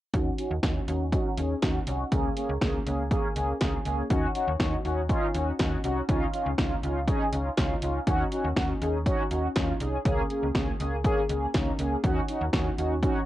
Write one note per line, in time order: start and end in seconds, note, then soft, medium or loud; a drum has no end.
0.13 0.31 D#2 loud
0.13 0.30 C#4 loud
0.13 0.30 D#4 loud
0.13 0.30 F#4 loud
0.13 kick loud
0.13 closed hi-hat medium
0.38 0.55 C#4 medium
0.38 0.55 D#4 medium
0.38 0.55 F#4 medium
0.38 closed hi-hat medium
0.51 0.59 D#2 medium
0.63 0.80 D#2 medium
0.63 0.80 C#4 medium
0.63 0.80 D#4 medium
0.63 0.80 F#4 medium
0.63 kick loud
0.63 snare medium
0.63 closed hi-hat medium
0.88 1.14 D#2 loud
0.88 1.05 C#4 medium
0.88 1.05 D#4 medium
0.88 1.05 F#4 medium
0.88 closed hi-hat medium
1.13 1.29 C#4 loud
1.13 1.29 D#4 loud
1.13 1.29 F#4 loud
1.13 kick loud
1.13 closed hi-hat medium
1.37 1.55 D#2 medium
1.37 1.54 C#4 medium
1.37 1.54 D#4 medium
1.37 1.54 G#4 medium
1.37 closed hi-hat medium
1.62 1.80 D#2 loud
1.62 1.79 C#4 medium
1.62 1.79 D#4 medium
1.62 1.79 F#4 loud
1.62 kick loud
1.62 snare loud
1.62 closed hi-hat medium
1.87 2.05 C2 medium
1.87 2.04 C#4 medium
1.87 2.04 D#4 medium
1.87 2.04 F#4 medium
1.87 closed hi-hat medium
2.12 2.29 C#2 medium
2.12 2.29 A#3 loud
2.12 2.29 C#4 loud
2.12 2.29 G#4 loud
2.12 kick loud
2.12 closed hi-hat medium
2.37 2.53 A#3 medium
2.37 2.53 C#4 medium
2.37 2.53 G#4 medium
2.37 closed hi-hat medium
2.49 2.58 C#2 medium
2.61 2.79 C#2 loud
2.61 2.78 A#3 medium
2.61 2.78 C#4 medium
2.61 2.78 G#4 medium
2.61 kick loud
2.61 snare loud
2.61 closed hi-hat medium
2.86 3.12 C#2 loud
2.86 3.03 A#3 medium
2.86 3.03 C#4 medium
2.86 3.03 G#4 medium
2.86 closed hi-hat medium
3.11 3.28 A#3 loud
3.11 3.28 C#4 loud
3.11 3.28 G#4 loud
3.11 kick loud
3.11 closed hi-hat medium
3.36 3.53 C#2 medium
3.36 3.53 A#3 medium
3.36 3.53 C#4 medium
3.36 3.53 G#4 medium
3.36 closed hi-hat medium
3.61 3.78 C#2 loud
3.61 3.77 A#3 medium
3.61 3.77 C#4 medium
3.61 3.77 G#4 medium
3.61 kick loud
3.61 snare loud
3.61 closed hi-hat medium
3.85 4.03 C#2 loud
3.85 4.02 A#3 medium
3.85 4.02 C#4 medium
3.85 4.02 G#4 medium
3.85 closed hi-hat medium
4.10 4.28 D#2 loud
4.10 4.27 C#4 loud
4.10 4.27 D#4 medium
4.10 4.27 F#4 loud
4.10 kick loud
4.10 closed hi-hat medium
4.35 4.52 C#4 medium
4.35 4.52 D#4 medium
4.35 4.52 F#4 medium
4.35 closed hi-hat medium
4.48 4.56 D#2 loud
4.60 4.77 D#2 loud
4.60 4.77 C#4 medium
4.60 4.77 D#4 medium
4.60 4.76 F#4 medium
4.60 kick loud
4.60 snare loud
4.60 closed hi-hat medium
4.85 5.11 D#2 medium
4.85 5.01 C#4 medium
4.85 5.01 D#4 medium
4.85 5.01 F#4 medium
4.85 closed hi-hat medium
5.09 5.26 C#4 loud
5.09 5.26 D#4 loud
5.09 5.26 F4 loud
5.09 kick loud
5.09 closed hi-hat medium
5.34 5.52 D#2 loud
5.34 5.51 C#4 medium
5.34 5.51 D#4 medium
5.34 5.51 F#4 medium
5.34 closed hi-hat medium
5.59 5.77 D#2 loud
5.59 5.76 C#4 medium
5.59 5.76 D#4 medium
5.59 5.76 F#4 medium
5.59 kick medium
5.59 snare loud
5.59 closed hi-hat medium
5.84 6.01 C2 loud
5.84 6.00 C#4 medium
5.84 6.00 D#4 medium
5.84 6.00 F#4 medium
5.84 closed hi-hat medium
6.09 6.26 C#2 loud
6.09 6.25 C#4 loud
6.09 6.25 D#4 loud
6.09 6.25 F4 loud
6.09 kick loud
6.09 closed hi-hat medium
6.33 6.50 C#4 medium
6.33 6.50 D#4 medium
6.33 6.50 F4 loud
6.33 closed hi-hat medium
6.46 6.55 C#2 loud
6.58 6.76 C#2 loud
6.58 6.75 C#4 medium
6.58 6.75 D#4 medium
6.58 6.75 F4 medium
6.58 kick loud
6.58 snare loud
6.58 closed hi-hat medium
6.83 7.09 C#2 loud
6.83 7.00 C#4 medium
6.83 7.00 D#4 medium
6.83 7.00 F4 medium
6.83 closed hi-hat medium
7.08 7.24 C#4 loud
7.08 7.24 D#4 loud
7.08 7.24 G#4 loud
7.08 kick loud
7.08 closed hi-hat medium
7.32 7.50 C#2 loud
7.32 7.49 C#4 medium
7.32 7.49 D#4 medium
7.32 7.49 F4 medium
7.32 closed hi-hat medium
7.57 7.75 C#2 loud
7.57 7.74 C#4 medium
7.57 7.74 D#4 medium
7.57 7.74 F4 loud
7.57 kick loud
7.57 snare loud
7.57 closed hi-hat medium
7.82 8.00 C#2 medium
7.82 7.99 C#4 medium
7.82 7.99 D#4 medium
7.82 7.99 F4 medium
7.82 closed hi-hat medium
8.07 8.24 D#2 loud
8.07 8.24 C#4 loud
8.07 8.24 D#4 loud
8.07 8.24 F#4 loud
8.07 kick loud
8.07 closed hi-hat medium
8.32 8.48 C#4 medium
8.32 8.48 D#4 medium
8.32 8.48 F#4 medium
8.32 closed hi-hat medium
8.44 8.53 D#2 medium
8.56 8.74 D#2 loud
8.56 8.73 C#4 medium
8.56 8.73 D#4 medium
8.56 8.73 F#4 medium
8.56 kick loud
8.56 snare loud
8.56 closed hi-hat medium
8.81 9.07 D#2 loud
8.81 8.98 C#4 medium
8.81 8.98 D#4 medium
8.81 8.98 G#4 medium
8.81 closed hi-hat medium
9.06 9.23 C#4 loud
9.06 9.23 D#4 loud
9.06 9.23 F#4 loud
9.06 kick loud
9.06 closed hi-hat medium
9.31 9.48 D#2 medium
9.31 9.48 C#4 medium
9.31 9.48 D#4 medium
9.31 9.48 F#4 medium
9.31 closed hi-hat medium
9.56 9.73 D#2 loud
9.56 9.72 C#4 medium
9.56 9.72 D#4 medium
9.56 9.72 F4 loud
9.56 kick loud
9.56 snare loud
9.56 closed hi-hat medium
9.80 9.98 C2 loud
9.80 9.97 C#4 medium
9.80 9.97 D#4 medium
9.80 9.97 G#4 medium
9.80 closed hi-hat medium
10.05 10.23 C#2 loud
10.05 10.22 A#3 loud
10.05 10.22 C#4 loud
10.05 10.22 G#4 loud
10.05 kick loud
10.05 closed hi-hat medium
10.30 10.47 A#3 medium
10.30 10.47 C#4 medium
10.30 10.47 G#4 medium
10.30 closed hi-hat medium
10.43 10.51 C#2 medium
10.55 10.72 C#2 loud
10.55 10.72 A#3 medium
10.55 10.72 C#4 medium
10.55 10.72 G#4 medium
10.55 kick loud
10.55 snare loud
10.55 closed hi-hat medium
10.80 11.06 C#2 loud
10.80 10.96 A#3 medium
10.80 10.96 C#4 medium
10.80 10.96 G#4 medium
10.80 closed hi-hat medium
11.04 11.21 A#3 loud
11.04 11.21 C#4 loud
11.04 11.21 G#4 loud
11.04 kick loud
11.04 closed hi-hat medium
11.29 11.47 C#2 medium
11.29 11.46 A#3 medium
11.29 11.46 C#4 medium
11.29 11.46 G#4 medium
11.29 closed hi-hat medium
11.54 11.72 C#2 loud
11.54 11.71 A#3 medium
11.54 11.71 C#4 medium
11.54 11.71 D#4 medium
11.54 kick loud
11.54 snare loud
11.54 closed hi-hat medium
11.79 11.96 C#2 medium
11.79 11.96 A#3 medium
11.79 11.96 C#4 medium
11.79 11.96 G#4 medium
11.79 closed hi-hat medium
12.04 12.21 D#2 loud
12.04 12.20 C#4 loud
12.04 12.20 D#4 loud
12.04 12.20 F#4 loud
12.04 kick loud
12.04 closed hi-hat medium
12.29 12.45 C#4 medium
12.29 12.45 D#4 medium
12.29 12.45 F#4 medium
12.29 closed hi-hat medium
12.41 12.50 D#2 medium
12.53 12.71 D#2 loud
12.53 12.70 C#4 medium
12.53 12.70 D#4 medium
12.53 12.70 F#4 medium
12.53 kick loud
12.53 snare loud
12.53 closed hi-hat medium
12.78 13.04 D#2 medium
12.78 12.95 C#4 medium
12.78 12.95 D#4 medium
12.78 12.95 F#4 medium
12.78 closed hi-hat medium
13.03 13.20 C#4 loud
13.03 13.20 D#4 loud
13.03 13.20 F#4 loud
13.03 kick loud
13.03 closed hi-hat medium